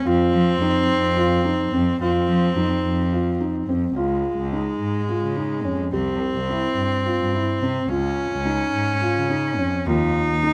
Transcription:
0.06 F2 C4 F4
0.33 F3
0.60 F2 D#4
0.88 F2
1.17 F4
1.45 D#4
1.73 F2 C4
2.01 F2 C4 F4
2.29 F3
2.56 F2 D#4
2.84 F2
3.13 F4
3.40 D#4
3.68 F2 C4
3.96 C#2 G#3 F4
4.38 C#2
4.53 D#4
4.80 G#2
5.09 F4
5.22 C#3
5.37 D#4
5.65 F2 C#4
5.93 C2 C4 G4
6.35 C2
6.49 E4
6.77 G2
7.06 F4
7.20 G2
7.33 E4
7.62 C3 C4
7.88 C#2 C#4 F4
8.33 C#2
8.46 D#4
8.74 G#2
9.02 F4
9.16 C#3
9.30 D#4
9.58 F2 C#4
9.86 D#2 D#4 F4
10.29 D#2
10.43 D#4

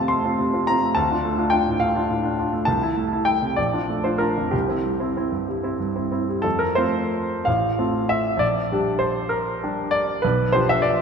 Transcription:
Already playing: C3 A3 C4 F4 F5 A5
0.08 A3 C6
0.25 C4 F4
0.39 C3
0.53 C4 F4
0.67 C4 F4 A#5
0.82 A3
0.95 D2 A5
1.10 D4 F4
1.25 A3
1.38 D4 F4
1.50 D4 F4 G5
1.68 A2
1.80 A3 F5
1.95 D4 F4
2.10 A2
2.23 D4 F4
2.39 D4 F4
2.53 A3
2.65 C2 A5
2.83 E4
2.97 A3
3.12 E4
3.25 E4 G5
3.42 C3
3.56 A#1 D5
3.73 D4 F4
3.89 A3
4.04 D4 F4 C5
4.18 D4 F4 A#4
4.38 F2
4.51 C2 G4
4.68 C4 E4
4.85 G3
5.00 C4 E4
5.17 C4 E4
5.32 G2
5.48 G3
5.63 C4 E4
5.80 G2
5.96 C4 E4
6.11 C4 E4
6.29 G3
6.42 F2 A4
6.59 A#4
6.75 A3 C4 F4 C5
7.45 A1 F5
7.78 A3 C4 F4
8.09 E5
8.37 A#1 D5
8.71 G3 D4 G4
8.99 C5
9.29 A#4
9.63 G3 D4 G4
9.91 D5
10.22 B1 B4
10.52 F3 D4 G4 C5
10.69 E5
10.82 D5

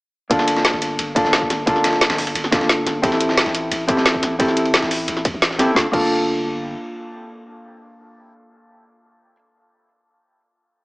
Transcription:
0.30 G1 A#3 D4 F4 A4, kick, closed hi-hat, ride
0.39 snare
0.48 closed hi-hat, ride
0.56 F1, snare
0.65 snare, closed hi-hat, ride
0.74 G1, snare
0.82 closed hi-hat, ride
0.99 G1, closed hi-hat, ride
1.15 A#3 D4 F4 A4, kick, closed hi-hat, ride
1.25 G1, snare
1.33 snare, closed hi-hat, ride
1.42 kick
1.50 G1, snare, closed hi-hat, ride
1.66 G1 A#3 D4 F4 A4, kick, closed hi-hat, ride
1.76 snare
1.84 snare, closed hi-hat, ride
1.93 F1, snare
2.01 snare, closed hi-hat, ride
2.10 G1, snare, ride
2.18 snare, open hi-hat
2.27 ride
2.35 G1, closed hi-hat, ride
2.44 snare
2.51 A#3 D4 F4 A4, kick, snare, closed hi-hat, ride
2.61 G1, snare
2.69 snare, closed hi-hat, ride
2.86 G1, snare, closed hi-hat, ride
3.02 A1 C4 E4 G4 A4, kick, closed hi-hat, ride
3.12 snare
3.20 closed hi-hat, ride
3.29 G1, snare
3.37 snare, closed hi-hat, ride
3.46 A1, snare
3.54 closed hi-hat, ride
3.71 A1, closed hi-hat, ride
3.88 C4 E4 G4 A4, kick, closed hi-hat, ride
3.97 A1, snare
4.06 snare, closed hi-hat, ride
4.14 kick
4.23 A1, snare, closed hi-hat, ride
4.39 A1 C4 E4 G4 A4, kick, closed hi-hat, ride
4.48 snare
4.57 closed hi-hat, ride
4.66 G1, ride
4.74 snare, closed hi-hat, ride
4.82 A1, snare
4.91 open hi-hat, ride
5.08 A1, closed hi-hat, ride
5.17 snare
5.25 kick, closed hi-hat, ride
5.34 A1
5.42 snare, closed hi-hat, ride
5.51 snare
5.59 A1 C4 E4 G4 A4, snare, closed hi-hat, ride
5.75 G1 A#3 D4 F4 A4, kick, snare
5.92 G1 A#3 D4 F4 A4, kick, crash

